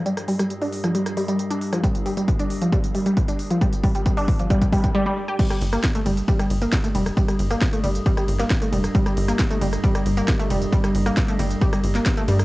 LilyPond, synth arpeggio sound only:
\new Staff \with { instrumentName = "Synth arpeggio sound" } { \clef bass \time 4/4 \key c \dorian \tempo 4 = 135 g16 r16 g16 g16 r16 d'16 r16 f16 g16 r16 g16 g16 r16 d'16 r16 f16 | g16 r16 g16 g16 r16 d'16 r16 f16 g16 r16 g16 g16 r16 d'16 r16 f16 | g16 r16 g16 g16 r16 d'16 r16 f16 g16 r16 g16 r16 g16 g16 r16 g'16 | g16 g16 r16 bes16 r16 a16 g16 r16 g16 g16 r16 bes16 r16 a16 g16 r16 |
g16 g16 r16 bes16 r16 a16 g16 r16 g16 g16 r16 bes16 r16 a16 g16 r16 | g16 g16 r16 bes16 r16 a16 g16 r16 g16 g16 r16 bes16 r16 a16 g16 r16 | g16 g16 r16 bes16 r16 a16 g16 r16 g16 g16 r16 bes16 r16 a16 g16 r16 | }